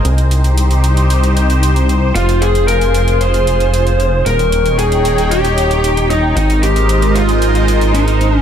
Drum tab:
HH |xxxxxxxxxxxxxxx-|xxxxxxxxxxxxxxx-|xxxxxxxxxxxxxxx-|xxxxxxxxxxxxxxx-|